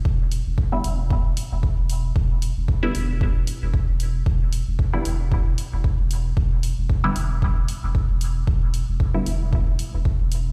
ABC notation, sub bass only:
X:1
M:4/4
L:1/16
Q:"Swing 16ths" 1/4=114
K:Em
V:1 name="Sub bass" clef=bass
E,,,3 E,,, z2 E,,,3 E,,, z E,,, z E,,,3 | E,,,3 E,,, z2 E,,,3 E,,, z E,,, z E,,,3 | E,,,3 E,,, z2 E,,,3 E,,, z E,,, z E,,,3 | E,,,3 E,,, z2 E,,,3 E,,, z E,,, z E,,,3 |
E,,,3 E,,, z2 E,,,3 E,,, z E,,, z E,,,3 |]